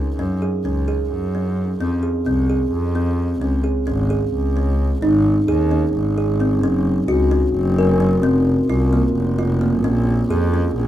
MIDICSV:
0, 0, Header, 1, 3, 480
1, 0, Start_track
1, 0, Tempo, 459770
1, 200, Time_signature, 7, 3, 24, 8
1, 11355, End_track
2, 0, Start_track
2, 0, Title_t, "Kalimba"
2, 0, Program_c, 0, 108
2, 199, Note_on_c, 0, 61, 63
2, 370, Note_off_c, 0, 61, 0
2, 440, Note_on_c, 0, 68, 53
2, 610, Note_off_c, 0, 68, 0
2, 679, Note_on_c, 0, 61, 59
2, 850, Note_off_c, 0, 61, 0
2, 918, Note_on_c, 0, 68, 57
2, 1259, Note_off_c, 0, 68, 0
2, 1407, Note_on_c, 0, 61, 56
2, 1745, Note_off_c, 0, 61, 0
2, 1885, Note_on_c, 0, 60, 67
2, 2054, Note_off_c, 0, 60, 0
2, 2117, Note_on_c, 0, 68, 54
2, 2289, Note_off_c, 0, 68, 0
2, 2362, Note_on_c, 0, 60, 62
2, 2532, Note_off_c, 0, 60, 0
2, 2606, Note_on_c, 0, 68, 54
2, 2945, Note_off_c, 0, 68, 0
2, 3084, Note_on_c, 0, 60, 64
2, 3423, Note_off_c, 0, 60, 0
2, 3566, Note_on_c, 0, 61, 66
2, 3735, Note_off_c, 0, 61, 0
2, 3798, Note_on_c, 0, 68, 57
2, 3970, Note_off_c, 0, 68, 0
2, 4039, Note_on_c, 0, 61, 69
2, 4211, Note_off_c, 0, 61, 0
2, 4282, Note_on_c, 0, 68, 58
2, 4623, Note_off_c, 0, 68, 0
2, 4768, Note_on_c, 0, 61, 58
2, 5106, Note_off_c, 0, 61, 0
2, 5245, Note_on_c, 0, 63, 74
2, 5584, Note_off_c, 0, 63, 0
2, 5724, Note_on_c, 0, 68, 70
2, 5894, Note_off_c, 0, 68, 0
2, 5964, Note_on_c, 0, 61, 63
2, 6303, Note_off_c, 0, 61, 0
2, 6448, Note_on_c, 0, 68, 61
2, 6617, Note_off_c, 0, 68, 0
2, 6685, Note_on_c, 0, 60, 61
2, 6854, Note_off_c, 0, 60, 0
2, 6927, Note_on_c, 0, 61, 79
2, 7265, Note_off_c, 0, 61, 0
2, 7395, Note_on_c, 0, 66, 73
2, 7568, Note_off_c, 0, 66, 0
2, 7635, Note_on_c, 0, 61, 66
2, 7978, Note_off_c, 0, 61, 0
2, 8128, Note_on_c, 0, 70, 66
2, 8296, Note_off_c, 0, 70, 0
2, 8355, Note_on_c, 0, 61, 70
2, 8528, Note_off_c, 0, 61, 0
2, 8595, Note_on_c, 0, 60, 80
2, 8937, Note_off_c, 0, 60, 0
2, 9078, Note_on_c, 0, 65, 75
2, 9249, Note_off_c, 0, 65, 0
2, 9320, Note_on_c, 0, 58, 64
2, 9660, Note_off_c, 0, 58, 0
2, 9799, Note_on_c, 0, 65, 71
2, 9970, Note_off_c, 0, 65, 0
2, 10034, Note_on_c, 0, 58, 68
2, 10207, Note_off_c, 0, 58, 0
2, 10275, Note_on_c, 0, 61, 78
2, 10617, Note_off_c, 0, 61, 0
2, 10758, Note_on_c, 0, 68, 68
2, 10929, Note_off_c, 0, 68, 0
2, 11001, Note_on_c, 0, 61, 66
2, 11341, Note_off_c, 0, 61, 0
2, 11355, End_track
3, 0, Start_track
3, 0, Title_t, "Double bass"
3, 0, Program_c, 1, 43
3, 0, Note_on_c, 1, 37, 76
3, 154, Note_off_c, 1, 37, 0
3, 193, Note_on_c, 1, 42, 64
3, 417, Note_off_c, 1, 42, 0
3, 671, Note_on_c, 1, 37, 70
3, 1117, Note_off_c, 1, 37, 0
3, 1163, Note_on_c, 1, 42, 69
3, 1842, Note_off_c, 1, 42, 0
3, 1877, Note_on_c, 1, 41, 65
3, 2100, Note_off_c, 1, 41, 0
3, 2359, Note_on_c, 1, 36, 75
3, 2802, Note_off_c, 1, 36, 0
3, 2841, Note_on_c, 1, 41, 77
3, 3521, Note_off_c, 1, 41, 0
3, 3562, Note_on_c, 1, 37, 76
3, 3784, Note_off_c, 1, 37, 0
3, 4041, Note_on_c, 1, 32, 76
3, 4483, Note_off_c, 1, 32, 0
3, 4529, Note_on_c, 1, 37, 73
3, 5205, Note_off_c, 1, 37, 0
3, 5244, Note_on_c, 1, 32, 82
3, 5685, Note_off_c, 1, 32, 0
3, 5728, Note_on_c, 1, 39, 77
3, 6167, Note_off_c, 1, 39, 0
3, 6200, Note_on_c, 1, 32, 78
3, 6921, Note_on_c, 1, 30, 84
3, 6936, Note_off_c, 1, 32, 0
3, 7363, Note_off_c, 1, 30, 0
3, 7392, Note_on_c, 1, 37, 74
3, 7838, Note_off_c, 1, 37, 0
3, 7870, Note_on_c, 1, 30, 94
3, 8580, Note_on_c, 1, 29, 85
3, 8596, Note_off_c, 1, 30, 0
3, 9031, Note_off_c, 1, 29, 0
3, 9075, Note_on_c, 1, 36, 82
3, 9519, Note_off_c, 1, 36, 0
3, 9548, Note_on_c, 1, 29, 88
3, 10276, Note_on_c, 1, 34, 94
3, 10292, Note_off_c, 1, 29, 0
3, 10719, Note_off_c, 1, 34, 0
3, 10758, Note_on_c, 1, 41, 86
3, 11200, Note_off_c, 1, 41, 0
3, 11234, Note_on_c, 1, 34, 86
3, 11355, Note_off_c, 1, 34, 0
3, 11355, End_track
0, 0, End_of_file